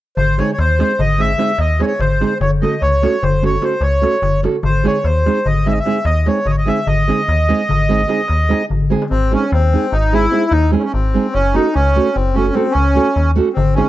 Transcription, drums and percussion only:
0.17 darbuka dum medium
0.39 darbuka tek medium
0.59 darbuka tek medium
0.70 darbuka tek soft
0.80 darbuka tek medium
1.00 darbuka dum medium
1.20 darbuka tek medium
1.39 darbuka tek medium
1.58 darbuka tek medium
1.80 darbuka tek medium
1.91 darbuka tek soft
2.00 darbuka tek medium
2.00 darbuka dum medium
2.21 darbuka tek medium
2.31 darbuka tek soft
2.41 darbuka dum loud
2.52 darbuka tek soft
2.63 darbuka tek medium
2.73 darbuka tek soft
2.82 darbuka tek medium
3.03 darbuka tek medium
3.23 darbuka dum loud
3.44 darbuka tek medium
3.62 darbuka tek medium
3.81 darbuka tek medium
4.03 darbuka tek medium
4.13 darbuka tek soft
4.23 darbuka tek medium
4.23 darbuka dum medium
4.44 darbuka tek medium
4.54 darbuka tek soft
4.63 darbuka dum medium
4.74 darbuka tek soft
4.85 darbuka tek medium
5.05 darbuka tek medium
5.26 darbuka tek medium
5.46 darbuka dum medium
5.67 darbuka tek medium
5.86 darbuka tek medium
6.05 darbuka tek medium
6.27 darbuka tek medium
6.37 darbuka tek soft
6.47 darbuka tek medium
6.47 darbuka dum medium
6.68 darbuka tek medium
6.87 darbuka dum medium
6.98 darbuka tek soft
7.09 darbuka tek medium
7.20 darbuka tek soft
7.29 darbuka tek medium
7.69 darbuka dum medium
7.79 darbuka tek soft
7.90 darbuka tek soft
8.00 darbuka tek soft
8.09 darbuka tek medium
8.28 darbuka tek medium
8.39 darbuka tek soft
8.50 darbuka tek medium
8.60 darbuka tek soft
8.70 darbuka dum soft
8.81 darbuka dum medium
8.92 darbuka tek medium
9.02 darbuka tek medium
13.57 darbuka dum medium
13.67 darbuka tek soft
13.78 darbuka tek medium

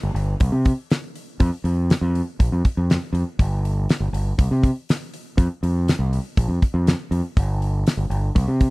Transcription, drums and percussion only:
0.16 open hi-hat medium
0.40 kick loud
0.40 open hi-hat medium
0.65 kick medium
0.65 open hi-hat medium
0.90 snare loud
0.90 open hi-hat medium
1.16 open hi-hat medium
1.40 kick loud
1.40 open hi-hat medium
1.65 open hi-hat soft
1.90 snare loud
1.90 open hi-hat medium
2.15 open hi-hat soft
2.40 kick loud
2.40 open hi-hat medium
2.65 kick medium
2.65 open hi-hat soft
2.90 snare loud
2.90 open hi-hat medium
3.15 open hi-hat soft
3.39 kick loud
3.39 open hi-hat medium
3.65 open hi-hat medium
3.89 snare loud
3.89 open hi-hat medium
4.14 open hi-hat medium
4.39 kick loud
4.39 open hi-hat medium
4.63 kick medium
4.63 open hi-hat medium
4.89 snare loud
4.89 open hi-hat medium
5.14 open hi-hat medium
5.38 kick loud
5.38 open hi-hat medium
5.63 open hi-hat medium
5.88 snare loud
5.88 open hi-hat medium
6.13 open hi-hat medium
6.37 kick loud
6.37 open hi-hat medium
6.62 kick medium
6.62 open hi-hat soft
6.87 snare loud
6.87 open hi-hat medium
7.12 open hi-hat medium
7.37 kick loud
7.37 open hi-hat medium
7.62 open hi-hat soft
7.87 snare loud
7.87 open hi-hat medium
8.11 open hi-hat medium
8.36 kick loud
8.36 open hi-hat medium
8.61 kick medium
8.61 open hi-hat medium

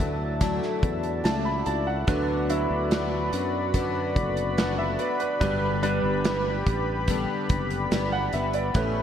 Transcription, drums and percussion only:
0.00 kick medium
0.00 closed hi-hat medium
0.41 kick medium
0.41 closed hi-hat medium
0.63 snare soft
0.83 kick medium
0.83 closed hi-hat medium
1.03 closed hi-hat soft
1.25 snare medium
1.25 closed hi-hat medium
1.66 closed hi-hat soft
2.08 kick loud
2.08 closed hi-hat medium
2.50 closed hi-hat medium
2.91 snare loud
2.91 closed hi-hat medium
3.33 closed hi-hat medium
3.74 kick medium
3.74 closed hi-hat medium
4.16 kick medium
4.16 closed hi-hat medium
4.37 closed hi-hat soft
4.58 snare medium
4.58 closed hi-hat medium
4.99 closed hi-hat medium
5.20 closed hi-hat soft
5.41 kick loud
5.41 closed hi-hat medium
5.83 closed hi-hat medium
6.25 snare loud
6.25 closed hi-hat medium
6.66 kick medium
6.66 closed hi-hat medium
7.08 kick medium
7.08 closed hi-hat medium
7.49 kick medium
7.49 closed hi-hat medium
7.70 closed hi-hat soft
7.92 snare medium
7.92 closed hi-hat medium
8.33 closed hi-hat soft
8.53 closed hi-hat soft
8.74 kick loud
8.74 closed hi-hat medium

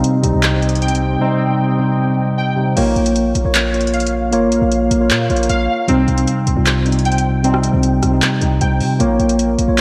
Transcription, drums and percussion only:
0.04 closed hi-hat medium
0.24 closed hi-hat medium
0.43 clap loud
0.43 closed hi-hat medium
0.62 closed hi-hat soft
0.69 closed hi-hat medium
0.75 closed hi-hat medium
0.82 closed hi-hat medium
0.88 closed hi-hat medium
0.95 closed hi-hat medium
2.77 closed hi-hat medium
2.77 crash medium
2.96 closed hi-hat soft
3.06 closed hi-hat medium
3.16 closed hi-hat medium
3.35 closed hi-hat medium
3.55 clap loud
3.55 closed hi-hat medium
3.74 closed hi-hat soft
3.81 closed hi-hat medium
3.87 closed hi-hat medium
3.94 closed hi-hat medium
4.00 closed hi-hat medium
4.07 closed hi-hat medium
4.33 closed hi-hat medium
4.52 closed hi-hat medium
4.72 closed hi-hat medium
4.91 closed hi-hat medium
5.10 clap loud
5.10 closed hi-hat medium
5.30 closed hi-hat soft
5.36 closed hi-hat medium
5.43 closed hi-hat medium
5.49 closed hi-hat medium
5.88 closed hi-hat medium
6.08 closed hi-hat soft
6.18 closed hi-hat medium
6.27 closed hi-hat medium
6.47 closed hi-hat medium
6.66 clap loud
6.66 closed hi-hat medium
6.86 closed hi-hat soft
6.92 closed hi-hat medium
6.99 closed hi-hat medium
7.05 closed hi-hat medium
7.12 closed hi-hat medium
7.18 closed hi-hat medium
7.44 closed hi-hat medium
7.54 cross-stick medium
7.63 closed hi-hat medium
7.83 closed hi-hat medium
8.03 cross-stick medium
8.03 closed hi-hat medium
8.22 clap loud
8.22 closed hi-hat medium
8.41 closed hi-hat medium
8.61 closed hi-hat medium
8.80 open hi-hat medium
9.00 closed hi-hat medium
9.20 closed hi-hat soft
9.29 closed hi-hat medium
9.39 closed hi-hat medium
9.59 closed hi-hat medium

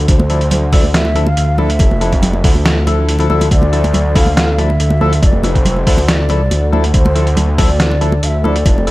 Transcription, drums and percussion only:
0.08 kick loud
0.08 closed hi-hat medium
0.19 muted conga medium
0.19 high conga medium
0.30 closed hi-hat medium
0.41 closed hi-hat soft
0.51 closed hi-hat medium
0.51 muted conga soft
0.51 high conga medium
0.51 low conga loud
0.72 kick loud
0.72 open hi-hat medium
0.72 muted conga medium
0.84 high conga medium
0.94 snare loud
0.94 closed hi-hat medium
1.05 muted conga medium
1.15 closed hi-hat medium
1.15 high conga medium
1.26 muted conga medium
1.37 closed hi-hat medium
1.58 muted conga medium
1.58 high conga medium
1.70 closed hi-hat medium
1.79 kick loud
1.79 closed hi-hat medium
1.79 muted conga medium
1.91 high conga medium
2.01 closed hi-hat medium
2.12 kick medium
2.12 closed hi-hat soft
2.12 muted conga soft
2.22 closed hi-hat medium
2.22 high conga medium
2.22 low conga loud
2.33 muted conga medium
2.44 kick loud
2.44 open hi-hat medium
2.55 high conga medium
2.65 snare loud
2.65 closed hi-hat medium
2.65 muted conga soft
2.87 closed hi-hat medium
2.87 muted conga medium
2.87 high conga medium
3.09 closed hi-hat medium
3.19 closed hi-hat soft
3.19 muted conga medium
3.30 high conga medium
3.41 closed hi-hat medium
3.41 muted conga medium
3.51 kick loud
3.51 closed hi-hat medium
3.62 muted conga medium
3.62 high conga loud
3.73 closed hi-hat soft
3.84 closed hi-hat soft
3.84 muted conga medium
3.93 closed hi-hat medium
3.93 high conga medium
3.93 low conga medium
4.16 kick loud
4.16 open hi-hat medium
4.16 muted conga medium
4.26 high conga loud
4.37 snare loud
4.37 closed hi-hat medium
4.37 muted conga medium
4.58 closed hi-hat medium
4.58 high conga medium
4.70 muted conga medium
4.80 closed hi-hat medium
4.90 muted conga medium
5.01 high conga medium
5.13 closed hi-hat medium
5.23 kick loud
5.23 closed hi-hat medium
5.23 muted conga soft
5.33 high conga medium
5.43 closed hi-hat medium
5.43 muted conga medium
5.55 kick medium
5.55 closed hi-hat soft
5.65 closed hi-hat medium
5.65 high conga medium
5.65 low conga medium
5.77 muted conga soft
5.87 kick loud
5.87 open hi-hat medium
5.98 muted conga medium
5.98 high conga medium
6.08 snare loud
6.08 closed hi-hat medium
6.29 closed hi-hat medium
6.29 muted conga soft
6.29 high conga medium
6.51 closed hi-hat medium
6.51 muted conga medium
6.73 high conga medium
6.84 closed hi-hat medium
6.84 muted conga soft
6.94 kick loud
6.94 closed hi-hat medium
7.05 muted conga medium
7.05 high conga medium
7.16 closed hi-hat medium
7.27 closed hi-hat soft
7.37 closed hi-hat medium
7.37 muted conga medium
7.37 high conga medium
7.37 low conga medium
7.58 kick loud
7.58 open hi-hat loud
7.58 muted conga medium
7.69 high conga medium
7.80 snare loud
7.80 closed hi-hat medium
7.92 muted conga medium
8.01 closed hi-hat medium
8.01 high conga medium
8.12 muted conga medium
8.23 closed hi-hat medium
8.44 muted conga soft
8.44 high conga medium
8.56 closed hi-hat medium
8.66 kick loud
8.66 closed hi-hat medium
8.66 muted conga medium
8.78 high conga medium
8.87 closed hi-hat medium

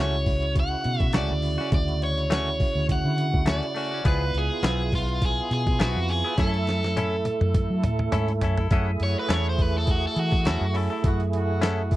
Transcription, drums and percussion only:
0.26 kick medium
0.26 open hi-hat medium
0.42 closed hi-hat soft
0.55 kick medium
0.55 closed hi-hat medium
0.84 closed hi-hat medium
1.00 kick medium
1.00 closed hi-hat soft
1.13 snare loud
1.13 closed hi-hat medium
1.42 open hi-hat medium
1.60 snare soft
1.72 kick loud
1.72 closed hi-hat medium
1.88 closed hi-hat soft
2.02 closed hi-hat medium
2.18 closed hi-hat soft
2.31 snare loud
2.31 closed hi-hat medium
2.60 kick medium
2.60 open hi-hat medium
2.89 kick medium
2.89 closed hi-hat medium
3.18 closed hi-hat medium
3.34 kick medium
3.46 snare loud
3.46 closed hi-hat medium
3.63 closed hi-hat soft
3.76 open hi-hat medium
4.05 kick loud
4.05 closed hi-hat medium
4.34 closed hi-hat medium
4.63 snare loud
4.63 closed hi-hat medium
4.92 kick medium
4.92 open hi-hat medium
5.09 closed hi-hat soft
5.22 kick medium
5.22 closed hi-hat medium
5.51 closed hi-hat medium
5.67 kick medium
5.67 closed hi-hat soft
5.80 snare loud
5.80 closed hi-hat medium
6.09 open hi-hat medium
6.38 kick loud
6.38 snare medium
6.38 closed hi-hat medium
6.54 closed hi-hat soft
6.67 snare medium
6.67 closed hi-hat medium
6.83 snare medium
6.83 closed hi-hat soft
6.97 closed hi-hat medium
6.97 high tom medium
7.25 closed hi-hat medium
7.25 high tom medium
7.41 mid tom medium
7.54 kick medium
7.54 closed hi-hat medium
7.54 mid tom medium
7.84 closed hi-hat medium
7.84 mid tom medium
7.99 mid tom medium
8.12 closed hi-hat medium
8.12 mid tom medium
8.28 closed hi-hat soft
8.41 closed hi-hat medium
8.41 floor tom medium
8.57 floor tom medium
8.71 kick loud
8.71 closed hi-hat medium
9.00 closed hi-hat medium
9.29 snare loud
9.29 closed hi-hat medium
9.59 kick medium
9.59 open hi-hat medium
9.87 kick medium
9.87 closed hi-hat medium
10.16 closed hi-hat medium
10.32 kick medium
10.32 closed hi-hat soft
10.45 snare loud
10.45 closed hi-hat medium
10.75 open hi-hat medium
11.04 kick loud
11.04 closed hi-hat medium
11.20 closed hi-hat soft
11.33 closed hi-hat medium
11.62 snare loud
11.62 closed hi-hat medium
11.91 kick medium
11.91 open hi-hat medium

